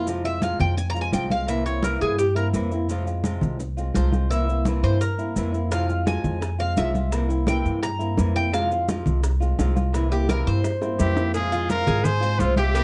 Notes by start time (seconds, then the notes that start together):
Already playing: F2
0.06 C3 F3 G#3 C4 F4, high conga, maracas
0.24 G#3 C4 F4 E5, high conga, maracas
0.42 C3 F3 G#3 C4 F4 F5, high conga, maracas
0.60 F2 G5, low conga, maracas
0.77 G#5, muted nylon-string guitar stroke, high conga, maracas
0.90 A#5
0.94 G#3 C4 F4, high conga, maracas
1.01 G#5
1.12 C2 C3 F3 G#3 C4 F4 G5, high conga, maracas
1.29 G#3 C4 F4 F5, high conga, maracas
1.47 C3 E3 A#3 C4 E4 E5, high conga, maracas
1.65 A#3 C4 E4 C#5, high conga, maracas
1.82 C3 E3 A#3 C4 E4 A#4, high conga, maracas
2.01 G2 G#4, high conga, maracas
2.18 G4, muted nylon-string guitar stroke, high conga, maracas
2.35 A#3 C4 E4 A#4, high conga, maracas
2.53 F2 C3 E3 A#3 C4 E4, high conga, maracas
2.71 A#3 C4 E4, high conga, maracas
2.89 C3 F3 G#3 C4 F4, high conga, maracas
3.06 G#3 C4 F4, high conga, maracas
3.23 C3 F3 G#3 C4 F4, high conga, maracas
3.41 C2, low conga, maracas
3.59 muted nylon-string guitar stroke, high conga, maracas
3.77 G#3 C4 F4, high conga, maracas
3.94 C2 C3 F3 G#3 C4 F4 C5, high conga, maracas
4.12 G#3 C4 F4, high conga, maracas
4.29 C3 E3 A#3 C4 E4 E5, high conga, maracas
4.48 A#3 C4 E4, high conga, maracas
4.65 C3 E3 A#3 C4 E4, high conga, maracas
4.83 G2 C5, high conga, maracas
5.01 A#4, muted nylon-string guitar stroke, high conga, maracas
5.18 A#3 C4 E4, high conga, maracas
5.36 F2 C3 E3 A#3 C4 E4, high conga, maracas
5.52 A#3 C4 E4, high conga, maracas
5.71 C3 F3 G#3 C4 F4 F5, high bongo, high conga, maracas
5.88 G#3 C4 F4, high conga, maracas
6.05 C3 F3 G#3 C4 F4 G#5, high bongo, high conga, maracas
6.24 F2, high bongo, low conga, maracas
6.41 muted nylon-string guitar stroke, high bongo, high conga, maracas
6.58 G#3 C4 F4 F5, high bongo, high conga, maracas
6.76 C2 C3 F3 G#3 C4 F4 E5, high bongo, low bongo, high conga, maracas
6.94 G#3 C4 F4, high bongo, high conga, maracas
7.11 C3 E3 A#3 C4 E4, high bongo, high conga, maracas
7.29 A#3 C4 E4, high conga, maracas
7.47 C3 E3 A#3 C4 E4 G5, high bongo, high conga, maracas
7.65 G2, high bongo, high conga, maracas
7.82 A#5, muted nylon-string guitar stroke, high bongo, high conga, maracas
7.99 A#3 C4 E4, high bongo, high conga, maracas
8.17 F2 C3 E3 A#3 C4 E4, high bongo, low bongo, high conga, maracas
8.35 A#3 C4 E4 G5, high bongo, maracas
8.52 C3 F3 G#3 C4 F4 F5, high bongo, high conga, maracas
8.71 G#3 C4 F4, high conga, maracas
8.88 C3 F3 G#3 C4 F4, high bongo, high conga, maracas
9.06 C2, high bongo, low conga, maracas
9.23 muted nylon-string guitar stroke, high bongo, high conga, maracas
9.40 G#3 C4 F4, high bongo, high conga, maracas
9.58 C2 C3 F3 G#3 C4 F4, high bongo, low bongo, high conga, maracas
9.76 G#3 C4 F4, high bongo, high conga, maracas
9.93 C3 E3 A#3 C4 E4, high bongo, high conga, maracas
10.10 A#3 C4 E4 G4, high conga, maracas
10.27 C3 E3 A#3 C4 E4 A#4, high bongo, high conga, maracas
10.46 G2 C5, high bongo, high conga, maracas
10.64 muted nylon-string guitar stroke, high bongo, high conga, maracas
10.81 A#3 C4 E4, high bongo, high conga, maracas
10.98 F2 C3 E3 A#3 C4 E4 G4 E5, high bongo, high conga, maracas
11.16 A#3 C4 E4, low bongo, high conga, maracas
11.34 C3 F3 G#3 C4 F4 G#4 F5, cowbell, high conga, maracas
11.52 G#3 C4 F4, high conga, maracas
11.69 C3 F3 G#3 C4 F4 A#4 F5, cowbell, high conga, maracas
11.87 G#2 G#4, low conga, maracas
12.04 C5 G#5, muted nylon-string guitar stroke, cowbell, high conga, low conga, maracas
12.20 G#3 C4 F4 C5, high conga, maracas
12.39 C2 C3 F3 G#3 C4 F4 C5, cowbell, high conga, maracas
12.56 G#3 C4 F4 G4 E5, cowbell, high conga, maracas
12.73 C3 E3 A#3 C4 E4, cowbell, high conga, maracas